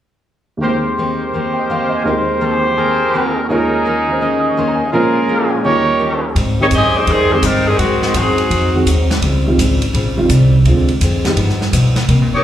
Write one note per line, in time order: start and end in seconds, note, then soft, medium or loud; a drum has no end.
0.57 2.03 D#2 soft
0.57 2.03 D#3 soft
0.61 0.88 D#3 soft
0.61 2.05 G#3 soft
0.61 0.88 A#3 soft
0.61 2.05 A#3 soft
0.61 0.88 C4 medium
0.61 2.04 G4 medium
0.61 0.88 G4 soft
0.61 2.04 A#4 medium
0.61 2.04 C5 medium
0.66 2.07 G4 soft
0.66 2.08 C5 soft
0.98 1.23 D#3 medium
0.98 1.24 A#3 medium
0.98 1.23 C4 medium
0.98 1.24 G4 medium
1.33 1.59 D#3 soft
1.33 1.59 A#3 soft
1.33 1.60 C4 soft
1.33 1.60 G4 medium
1.53 1.76 D#5 soft
1.53 1.78 G5 soft
1.69 1.95 D#3 medium
1.69 1.95 A#3 medium
1.69 1.95 C4 medium
1.69 1.95 G4 medium
1.69 1.92 F5 soft
1.69 1.98 F5 soft
1.81 2.00 G5 medium
1.88 2.13 D#5 soft
1.93 2.12 G#5 medium
2.04 3.48 D#2 soft
2.04 3.47 D#3 soft
2.04 2.31 D#3 soft
2.04 3.49 G#3 soft
2.04 3.50 A#3 soft
2.04 2.32 A#3 soft
2.04 2.32 C4 soft
2.04 3.49 G4 medium
2.04 2.76 A#4 medium
2.04 3.49 C5 medium
2.08 3.50 G4 soft
2.08 2.32 G4 soft
2.08 3.51 C5 medium
2.41 2.66 D#3 medium
2.41 2.66 A#3 medium
2.41 2.67 C4 medium
2.41 2.67 G4 medium
2.77 3.02 D#3 soft
2.77 3.03 A#3 soft
2.77 3.03 C4 soft
2.77 3.03 G4 medium
2.77 3.48 G#4 medium
2.77 3.48 A#4 medium
3.14 3.38 D#3 medium
3.14 3.39 A#3 medium
3.14 3.39 C4 medium
3.14 3.39 G4 medium
3.49 4.92 D#2 soft
3.49 4.06 D#3 soft
3.49 3.74 D#3 soft
3.49 4.92 G#3 soft
3.49 3.75 A#3 soft
3.49 3.75 C#4 soft
3.49 4.92 D#4 medium
3.49 4.93 F4 soft
3.49 4.91 G#4 medium
3.49 3.75 G#4 soft
3.49 4.20 A#4 medium
3.49 4.93 C#5 medium
3.85 4.10 D#3 medium
3.85 4.10 A#3 medium
3.85 4.10 C#4 medium
3.85 4.11 G#4 medium
4.08 4.92 D#3 soft
4.08 4.93 C#4 soft
4.08 4.93 C5 soft
4.21 4.46 D#3 soft
4.21 4.46 A#3 soft
4.21 4.46 C#4 medium
4.21 4.47 G#4 medium
4.21 4.91 A#4 medium
4.21 4.93 D#5 medium
4.40 4.50 D#6 soft
4.49 4.61 C#6 soft
4.57 4.82 D#3 medium
4.57 4.82 A#3 medium
4.57 4.82 C#4 medium
4.57 4.82 G#4 medium
4.57 4.74 C6 soft
4.68 4.82 A#5 soft
4.75 4.86 G#5 soft
4.85 4.97 D#5 soft
4.92 5.64 A#2 soft
4.92 5.17 A#2 soft
4.92 5.64 F3 soft
4.92 5.18 G#3 soft
4.92 5.65 G#3 soft
4.92 5.65 C#4 soft
4.92 5.18 C#4 soft
4.92 5.64 F4 medium
4.92 5.18 F4 soft
4.92 5.64 G#4 medium
4.92 5.63 A#4 medium
4.92 5.65 C5 soft
5.28 5.53 A#2 medium
5.28 5.53 G#3 medium
5.28 5.54 C#4 medium
5.28 5.54 F4 medium
5.28 5.56 F5 soft
5.45 5.71 G#5 soft
5.63 6.36 D#2 soft
5.63 6.36 D#3 soft
5.63 5.89 D#3 soft
5.63 6.36 G3 soft
5.63 5.89 A#3 soft
5.63 5.89 C#4 medium
5.63 6.35 D#4 medium
5.63 6.37 F4 soft
5.63 6.36 G4 medium
5.63 5.90 G4 medium
5.63 6.35 A#4 medium
5.63 6.35 C#5 medium
5.63 6.36 C#5 soft
5.99 6.24 D#3 medium
5.99 6.24 A#3 medium
5.99 6.24 C#4 medium
5.99 6.25 G4 medium
6.35 6.70 G#2 medium
6.35 6.61 G#2 soft
6.35 6.61 G3 soft
6.35 6.61 C4 soft
6.35 6.61 D#4 medium
6.35 kick soft
6.35 ride medium
6.60 6.70 D#3 medium
6.60 6.71 G#3 medium
6.60 6.66 A#3 medium
6.60 6.71 C4 medium
6.60 6.67 D#4 medium
6.60 6.71 G4 medium
6.60 6.66 G4 medium
6.60 6.66 C#5 medium
6.71 7.06 F#2 medium
6.71 6.96 G#2 soft
6.71 6.96 G3 medium
6.71 6.96 C4 medium
6.71 6.97 D#4 medium
6.71 kick soft
6.71 hi-hat pedal medium
6.71 ride medium
6.75 6.95 C4 medium
6.75 6.95 G4 medium
6.75 6.95 G#4 medium
6.75 6.95 D#5 loud
6.97 7.08 G#3 medium
6.97 7.08 D#4 medium
6.97 7.08 G4 medium
6.97 7.09 C5 medium
7.06 7.42 F2 medium
7.06 7.32 G#2 soft
7.06 7.32 G3 soft
7.06 7.32 C4 soft
7.06 7.33 D#4 soft
7.06 kick soft
7.06 ride medium
7.11 7.33 D#3 medium
7.11 7.33 G3 medium
7.11 7.33 C4 medium
7.11 7.33 G#4 medium
7.32 7.42 D#3 medium
7.32 7.43 G#3 soft
7.32 7.44 G#3 medium
7.32 7.43 C4 soft
7.32 7.43 D#4 medium
7.32 7.44 G4 medium
7.32 7.43 G4 medium
7.32 7.44 C5 medium
7.42 7.77 G2 medium
7.42 7.68 G#2 medium
7.42 7.68 G3 medium
7.42 7.66 G3 medium
7.42 7.68 C4 medium
7.42 7.66 C4 medium
7.42 7.67 D#4 medium
7.42 7.68 D#4 medium
7.42 7.67 A#4 medium
7.42 kick soft
7.42 hi-hat pedal medium
7.42 ride medium
7.67 7.78 D#3 medium
7.67 7.79 G3 medium
7.67 7.78 C4 medium
7.67 7.79 G#4 medium
7.78 8.13 G#2 medium
7.78 8.04 G#2 soft
7.78 8.02 D#3 medium
7.78 8.05 F#3 soft
7.78 8.02 G#3 medium
7.78 8.02 C4 medium
7.78 8.05 C4 soft
7.78 8.02 F#4 medium
7.78 kick soft
7.78 ride medium
7.82 8.05 D#4 soft
8.02 8.14 D#3 medium
8.02 8.14 G#3 medium
8.02 8.14 C4 medium
8.02 8.14 F#4 medium
8.02 snare soft
8.14 8.49 F#2 medium
8.14 8.40 G#2 soft
8.14 8.40 F#3 medium
8.14 8.87 C4 medium
8.14 8.40 C4 medium
8.14 8.87 D#4 medium
8.14 8.41 D#4 medium
8.14 8.87 F#4 medium
8.14 8.87 G#4 medium
8.14 kick soft
8.14 hi-hat pedal medium
8.14 ride medium
8.38 ride soft
8.50 8.85 F2 medium
8.50 8.75 G#2 soft
8.50 8.76 F#3 soft
8.50 8.76 C4 soft
8.50 8.76 D#4 soft
8.50 kick soft
8.50 ride medium
8.74 8.85 D#3 medium
8.74 8.85 G#3 soft
8.74 8.85 C4 soft
8.74 8.85 F#4 medium
8.86 9.21 D#2 medium
8.86 9.11 G#2 medium
8.86 9.11 F#3 medium
8.86 9.11 C4 medium
8.86 9.12 D#4 medium
8.86 kick soft
8.86 hi-hat pedal medium
8.86 ride medium
9.11 snare medium
9.11 ride soft
9.22 9.57 C#2 medium
9.22 9.47 C#3 soft
9.22 9.47 G3 medium
9.22 9.48 C4 medium
9.22 9.48 F4 medium
9.22 kick soft
9.22 ride medium
9.46 9.57 D#3 medium
9.46 9.58 G3 medium
9.46 9.58 C4 medium
9.46 9.58 F4 medium
9.58 9.93 G#1 medium
9.58 9.83 C#3 medium
9.58 9.84 G3 medium
9.58 9.84 C4 medium
9.58 9.84 F4 medium
9.58 kick soft
9.58 hi-hat pedal medium
9.58 ride medium
9.82 ride soft
9.93 10.28 A#1 medium
9.93 10.19 C#3 soft
9.93 10.19 G3 medium
9.93 10.19 C4 medium
9.93 10.20 F4 soft
9.93 kick soft
9.93 ride medium
10.17 10.28 D#3 medium
10.17 10.28 G3 soft
10.17 10.29 C4 medium
10.17 10.29 F4 medium
10.29 10.64 C2 medium
10.29 10.54 C#3 medium
10.29 10.55 G3 medium
10.29 10.55 C4 medium
10.29 10.55 F4 medium
10.29 kick soft
10.29 hi-hat pedal medium
10.29 ride medium
10.65 10.87 D2 medium
10.65 10.87 D3 soft
10.65 10.91 D3 soft
10.65 10.87 G#3 soft
10.65 10.91 G#3 soft
10.65 10.87 C4 soft
10.65 10.92 C4 medium
10.65 10.87 F4 medium
10.65 10.92 F4 medium
10.65 kick soft
10.65 ride medium
10.88 muted upright bass stroke soft
10.88 ride soft
11.01 11.36 F2 medium
11.01 11.26 D3 medium
11.01 11.27 G#3 medium
11.01 11.27 C4 medium
11.01 11.27 F4 medium
11.01 kick soft
11.01 hi-hat pedal soft
11.01 ride medium
11.25 11.37 D#3 medium
11.25 11.36 G3 soft
11.25 11.37 B3 soft
11.25 11.37 G4 medium
11.25 snare medium
11.25 ride soft
11.36 11.72 G2 medium
11.36 11.62 G2 soft
11.36 11.62 F3 soft
11.36 11.62 B3 medium
11.36 11.63 D#4 medium
11.36 kick soft
11.36 ride medium
11.49 snare soft
11.61 snare soft
11.72 11.97 G2 medium
11.72 12.08 B2 medium
11.72 11.98 F3 medium
11.72 11.98 B3 medium
11.72 11.98 D#4 medium
11.72 kick soft
11.72 hi-hat pedal medium
11.72 ride medium
11.96 snare soft
11.96 ride soft
12.08 12.33 C3 soft
12.08 12.21 C3 medium
12.08 12.34 G3 soft
12.08 12.34 A#3 medium
12.08 12.34 D#4 soft
12.08 kick soft
12.08 ride medium
12.21 12.32 A#2 medium
12.33 12.44 G2 medium
12.33 12.44 A#3 medium
12.33 12.44 D#4 medium
12.33 12.44 G4 medium
12.33 12.44 C#5 medium